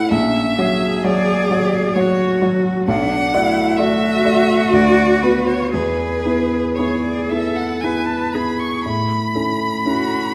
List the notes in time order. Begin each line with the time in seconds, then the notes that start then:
Already playing: A3 E4 C#5 F#5
0.11 A#1 C#4 E5
0.59 F#3 F#4 G#4 C#5
1.04 F#3 F#4 C#5 D5
1.51 F#3 F#4 C#5
1.95 F#3 F#4 C#5
1.99 F#4
2.42 F#3 F#4 C#5
2.88 B1 D4 F#5
3.34 A3 E4 F#4 D5
3.77 A3 F#4 D5 E5
4.25 A3 F#4 D5
4.73 D2 D5
5.22 B3 F#4 B4
5.47 C#5
5.72 E2 G#4 B4
6.25 B3 E4 G#4
6.75 B3 E4 G#4 C#5
7.04 D5
7.29 B3 E4 G#4 A4 E5
7.56 F#5
7.81 B3 E4 G#4 B4 G#5
8.06 A5
8.33 B3 E4 G#4 B5
8.59 C#6
8.85 A2 B5
9.35 C#4 E4 A4
9.86 C#4 E4 F#4 A4